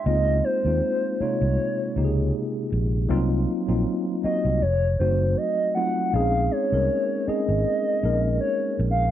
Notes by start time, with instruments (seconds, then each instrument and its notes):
0.06 fingered electric bass C#2, tine electric piano G#3 A#3 C4 D#4 F4, soft synth lead D#5
0.44 soft synth lead C5
0.65 fingered electric bass D#2, tine electric piano G#3 A#3 C4 D#4 F4
1.20 tine electric piano C3 G#3 A#3 D#4 F4, soft synth lead C#5, muted fingered electric bass stroke
1.41 fingered electric bass C2
1.96 fingered electric bass C#2, tine electric piano C3 G#3 A#3 D#4 G4
2.05 tine electric piano G#4
2.72 fingered electric bass A#1
3.09 fingered electric bass C2, tine electric piano F#3 A#3 C4 D#4 F4
3.67 fingered electric bass A#1, tine electric piano F#3 A#3 C4 D#4 F4
4.23 tine electric piano F#3 A#3 C4 D#4 F#4, soft synth lead D#5, muted fingered electric bass stroke
4.45 fingered electric bass C2
4.62 fingered electric bass F1, soft synth lead C#5
4.99 fingered electric bass F#1, tine electric piano F#3 A3 C4 D#4 F#4, soft synth lead C5
5.37 soft synth lead D#5
5.75 tine electric piano F#3 A3 C4 D#4 F4, soft synth lead F#5
6.13 fingered electric bass A#1, tine electric piano G#3 C4 C#4 D#4 G#4, soft synth lead F5
6.51 soft synth lead C#5
6.72 fingered electric bass C2, tine electric piano G#3 A#3 C#4 D#4 A#4
7.27 tine electric piano G#3 C4 C#4 D#4 G#4, soft synth lead D#5, muted fingered electric bass stroke
7.48 fingered electric bass G#1
8.03 fingered electric bass A#1, tine electric piano G#3 A#3 C#4 D#4 A#4
8.41 soft synth lead C#5
8.79 fingered electric bass A#1
8.91 soft synth lead F5